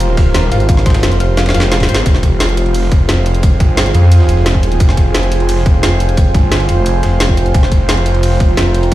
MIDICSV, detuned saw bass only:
0, 0, Header, 1, 2, 480
1, 0, Start_track
1, 0, Key_signature, -4, "minor"
1, 0, Tempo, 342857
1, 963, Time_signature, 4, 2, 24, 8
1, 12517, End_track
2, 0, Start_track
2, 0, Title_t, "Detuned saw bass"
2, 0, Program_c, 0, 39
2, 0, Note_on_c, 0, 29, 96
2, 464, Note_off_c, 0, 29, 0
2, 2883, Note_on_c, 0, 29, 99
2, 3104, Note_off_c, 0, 29, 0
2, 3123, Note_on_c, 0, 29, 98
2, 4304, Note_off_c, 0, 29, 0
2, 5043, Note_on_c, 0, 31, 96
2, 5504, Note_off_c, 0, 31, 0
2, 5523, Note_on_c, 0, 41, 94
2, 5984, Note_off_c, 0, 41, 0
2, 6723, Note_on_c, 0, 29, 103
2, 6943, Note_off_c, 0, 29, 0
2, 6963, Note_on_c, 0, 29, 99
2, 8144, Note_off_c, 0, 29, 0
2, 8883, Note_on_c, 0, 31, 96
2, 9344, Note_off_c, 0, 31, 0
2, 10563, Note_on_c, 0, 29, 103
2, 10784, Note_off_c, 0, 29, 0
2, 10803, Note_on_c, 0, 29, 97
2, 11984, Note_off_c, 0, 29, 0
2, 12517, End_track
0, 0, End_of_file